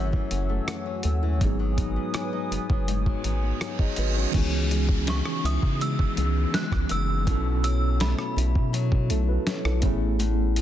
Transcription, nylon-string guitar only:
Already playing: F#2 E3 A3 C#4
0.12 E3
0.31 C#4
0.49 A3
0.67 E3
0.86 C#4
1.04 A3
1.23 E3
1.41 G#2
1.59 F#3
1.78 D#4
1.96 B3
2.14 F#3
2.33 D#4
2.51 B3
2.69 F#3
2.88 G#2
3.06 F#3
3.24 D#4
3.43 B3
3.61 F#3
3.79 D#4
3.98 B3
4.16 F#3
4.35 C#3
4.71 G#3
5.08 B3
5.44 E4
5.80 G#3
6.17 B3
6.54 G#3
6.90 B3
7.27 B2
7.63 F#3
8.00 A3
8.36 E4
8.73 F#3
9.10 A3
9.46 F#3
9.83 A2
10.19 A2
10.56 G#3

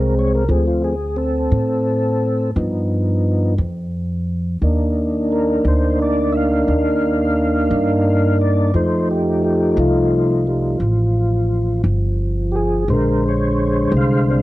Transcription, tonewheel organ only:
Already playing: G#3 C4
0.01 A#4
0.19 C#5
0.35 A#4
0.49 F3 A3 C4 G#4
0.67 F4
0.84 G#4
1.16 C4 A4
2.56 F3 B3 D#4
4.63 A#3 D4 D#4
5.32 A#4
5.68 C5
6.02 D5
6.32 E5
6.37 F5
8.41 D5
8.74 F3 A3 D#4 C5
9.11 G4
9.44 G4
9.80 A3 F4
10.47 G3 A3 D#4
12.52 G4
12.56 G#4
12.89 D3 G#3 A#4 C5
13.28 C#5
13.97 F5
14.30 G#3 C4 D4

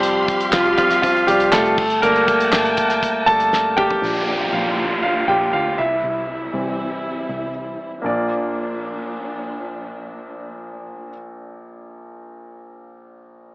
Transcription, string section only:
Already playing: G4 F5 C6
1.78 G5 A5
4.03 A#3 D4 F4
5.78 C3 G3 E4
8.04 A#2 F3 D4

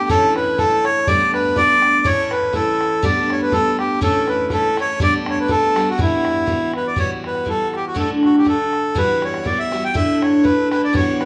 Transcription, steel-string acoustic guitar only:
Already playing: D4
0.09 A2 E3 A3 C#4 E4
0.58 E3 A3 C#4 E4
1.08 G3 A3 B3 D4
1.56 G3 A3 B3 D4
2.04 A2 E3 A3 C#4 E4
2.53 E3 A3 C#4 E4
3.02 G3 A3 B3 D4
3.52 G3 A3 B3 D4
4.01 A2 E3 A3 C#4 E4
4.51 E3 A3 C#4 E4
4.77 E3 A3 C#4 E4
5.00 G3 A3 B3 D4
5.48 G3 A3 B3 D4
5.76 G3 A3 B3 D4
5.98 E3 G3 B3 F#4
6.46 E3 G3 B3 F#4
6.96 E3 G3 B3 F#4
7.45 E3 G3 B3 F#4
7.94 D2 A2 D3 A3 D4 F#4
8.45 D3 A3 D4 F#4
8.95 E3 G3 B3 F#4
9.44 E3 G3 B3 F#4
9.71 E3 G3 B3 F#4
9.94 A2 D3 A3 D4 E4
10.43 D3 A3 D4 E4
10.71 D3 A3 D4 E4
10.93 E3 G3 B3 F#4

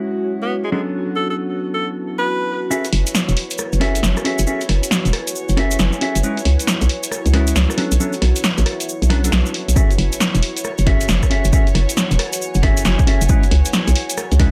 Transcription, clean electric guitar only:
Already playing: G#3 C#4 D#4 E4 B4
0.72 F#3 B3 C#4 D4 A4
2.70 C#4 F#4 G#4 A4 E5
3.80 C#4 F#4 G#4 A4 E5
4.25 C#4 F#4 G#4 A4 E5
4.47 C#4 F#4 G#4 A4 E5
5.57 C#4 F#4 G#4 A4 E5
6.01 C#4 F#4 G#4 A4 E5
6.23 G#3 C#4 D#4 E4 B4
7.33 G#3 C#4 D#4 E4 B4
7.77 F#3 B3 C#4 D4 A4
8.00 F#3 B3 C#4 D4 A4
9.10 F#3 B3 C#4 D4 B4
9.24 F#3 B3 C#4 D4 A4
9.76 C#4 F#4 G#4 A4 E5
10.86 C#4 F#4 G#4 A4 E5
11.30 C#4 F#4 G#4 A4 E5
11.52 C#4 F#4 G#4 A4 E5
12.63 C#4 F#4 G#4 A4 E5
13.07 C#4 F#4 G#4 A4 E5
13.29 G#3 C#4 D#4 E4 B4
14.39 G#3 C#4 D#4 E4 B4

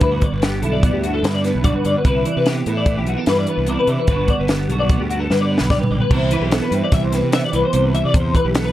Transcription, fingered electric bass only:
0.01 D2
0.32 G1
0.62 B1
0.93 D2
1.23 G2
1.55 B1
1.85 G2
2.05 C2
2.37 C3
2.66 A2
2.97 B1
3.27 G2
3.58 C2
3.87 C3
4.08 G1
4.39 G1
4.69 B1
4.99 D2
5.30 G2
5.61 B1
5.91 B1
6.11 C2
6.41 B1
6.71 G2
6.92 C2
7.23 C3
7.53 C2
7.73 C2
8.05 C3
8.14 E2
8.45 B1

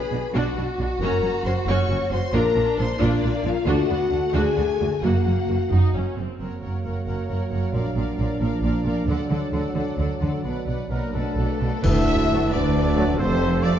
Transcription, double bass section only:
0.12 B1
0.34 B1
0.56 B1
0.78 B1
1.00 F#1
1.22 F#1
1.43 F#1
1.66 F#1
1.89 F#1
2.12 F#1
2.33 A#1
2.56 A#1
2.79 A#1
3.00 A#1
3.23 A#1
3.44 A#1
3.68 D2
3.90 D2
4.11 D2
4.33 D2
4.57 D2
4.79 D2
5.03 F#1
5.25 F#1
5.48 F#1
5.71 F#1
5.94 F#1
6.17 F#1
6.41 F#1
6.63 F#1
6.85 F#1
7.07 F#1
7.30 F#1
7.52 F#1
7.74 A#1
7.95 A#1
8.17 A#1
8.40 A#1
8.62 A#1
8.84 A#1
9.06 D2
9.30 D2
9.52 D2
9.75 D2
9.98 D2
10.21 D2
10.43 B1
10.66 B1
10.89 B1
11.12 B1
11.36 B1
11.60 B1
11.83 D2
12.52 D2
13.19 F1

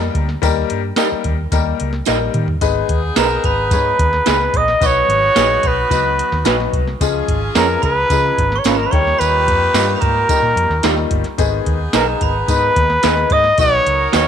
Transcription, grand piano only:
Already playing: G3 A#3 D#4 G4 A#4
0.42 G3 A#3 D#4 G4 A#4
0.96 G3 A#3 D#4 G4 A#4
1.52 G3 A#3 D#4 G4 A#4
2.07 G3 A#3 D#4 G4 A#4
2.61 G#3 B3 D#4 G#4 B4
3.17 G#3 B3 D#4 G#4 B4
3.71 G#3 B3 D#4 G#4 C#5
4.26 G#3 B3 D#4 G#4 B4
4.80 F#3 B3 D#4 F#4 B4
5.36 F#3 B3 D#4 F#4 G#4
5.90 F#3 B3 D#4 F#4 B4
6.45 F#3 B3 D#4 F#4 B4
7.01 F3 G#3 C#4 F4 G#4
7.56 F3 G#3 C#4 F4 B4
8.10 F3 G#3 C#4 F4 G#4
8.66 F3 G#3 C#4 F4 A#4
8.92 D#3 G3 D#4 G4
9.74 D#3 G3 A#3 D#4 F4
10.29 D#3 G3 A#3 D#4 G4
10.83 D#3 G3 A#3 D#4 F4
11.38 D#3 G#3 B3 D#4 G#4
11.93 D#3 G#3 B3 D#4 G#4
12.48 D#3 G#3 B3 D#4 B4
13.03 D#3 G#3 B3 D#4 G#4
13.58 D#3 F#3 B3 D#4 F#4
14.13 D#3 F#3 B3 D#4 F#4

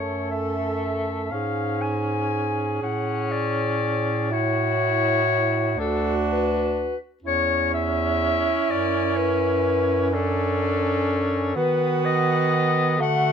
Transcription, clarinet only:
Already playing: C#5
0.31 E5
1.32 F5
1.82 G#5
2.83 F#5
3.32 D5
4.33 C#5
5.80 A4
6.29 B4
7.27 C#5
7.74 E5
8.71 D5
9.17 B4
10.14 A4
11.58 B4
12.05 D#5
13.02 F#5

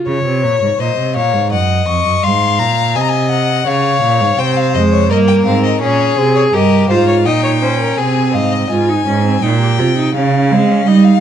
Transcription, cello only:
0.07 C#3
0.25 C3
0.44 A#2
0.62 G#2
0.80 A#2
0.98 C3
1.15 A#2
1.33 G#2
1.51 F#2
1.87 F2
2.05 F#2
2.23 G#2
2.59 A#2
2.95 C3
3.67 C#3
4.02 A#2
4.21 G#2
4.38 C3
4.74 F2
5.10 G2
5.46 G#2
5.82 A#2
6.17 C3
6.53 G2
6.89 G#2
7.26 A#2
7.98 C3
8.34 G#2
8.71 G#2
9.07 G#2
9.43 A#2
9.79 C3
10.15 C#3
10.51 G#3
10.87 G3

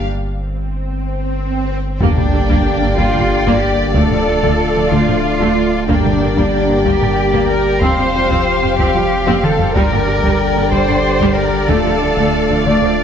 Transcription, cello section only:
2.02 D4
2.98 F4
3.62 G4
3.95 A4
4.92 F4
5.89 D4
6.86 G4
7.49 A#4
7.83 C5
8.79 G4
9.43 A4
9.76 A#4
10.73 C5
11.38 A#4
11.70 A4
12.67 D5

